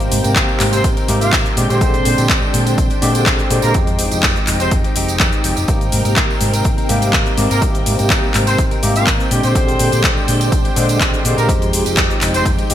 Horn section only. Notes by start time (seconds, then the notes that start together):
0.73 C4 C5
1.21 F4 F5
1.70 C4 C5
3.63 A#3 A#4
4.60 C4 C5
7.50 A#3 A#4
8.47 C4 C5
8.95 F4 F5
9.44 C4 C5
11.38 A#3 A#4
12.34 C4 C5